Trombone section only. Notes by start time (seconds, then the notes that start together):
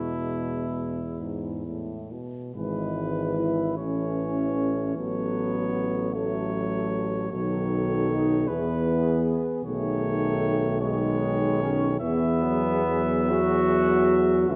Already playing: G#3
2.54 G#3
3.36 E4
3.78 C#4
4.96 B3
6.15 A3
7.33 F#3
8.09 D#4
8.48 B3
9.65 A3
10.81 G#3
11.60 C#4
12.00 B3
13.29 F#4
14.49 E4